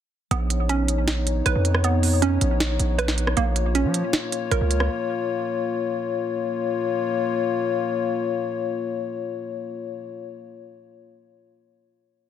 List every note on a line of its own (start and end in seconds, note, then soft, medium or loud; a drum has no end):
0.31 1.42 A#1 loud
0.31 1.83 B3 medium
0.31 3.34 B3 medium
0.31 3.34 D#4 medium
0.31 3.34 C#5 medium
0.31 closed hi-hat medium
0.50 closed hi-hat medium
0.69 2.21 C#4 medium
0.69 closed hi-hat medium
0.88 closed hi-hat medium
1.08 snare loud
1.08 closed hi-hat medium
1.27 closed hi-hat medium
1.46 1.55 A#1 loud
1.46 2.97 B4 medium
1.46 cross-stick medium
1.46 closed hi-hat medium
1.55 2.38 F2 loud
1.65 closed hi-hat medium
1.74 cross-stick loud
1.84 3.37 B3 medium
1.84 closed hi-hat medium
2.03 open hi-hat medium
2.22 3.37 C#4 medium
2.22 closed hi-hat medium
2.41 2.78 A#1 loud
2.41 closed hi-hat medium
2.60 snare loud
2.60 closed hi-hat medium
2.80 3.35 A#1 loud
2.80 closed hi-hat medium
2.98 3.37 B4 medium
2.98 cross-stick medium
2.98 closed hi-hat medium
3.08 snare medium
3.18 closed hi-hat medium
3.27 cross-stick loud
3.37 3.86 A#1 loud
3.37 5.66 A#3 loud
3.37 6.40 A#3 medium
3.37 6.40 F4 medium
3.37 6.40 C#5 medium
3.37 closed hi-hat medium
3.56 closed hi-hat medium
3.75 6.04 C#4 medium
3.75 closed hi-hat medium
3.85 4.03 F3 loud
3.94 closed hi-hat medium
4.13 snare loud
4.13 closed hi-hat medium
4.32 closed hi-hat medium
4.51 4.61 A#1 loud
4.51 6.43 A#4 medium
4.51 cross-stick medium
4.51 closed hi-hat medium
4.61 4.89 C#2 loud
4.71 closed hi-hat medium
4.80 cross-stick loud
6.43 10.06 A#3 medium
6.43 10.06 F4 medium
6.43 10.06 C#5 medium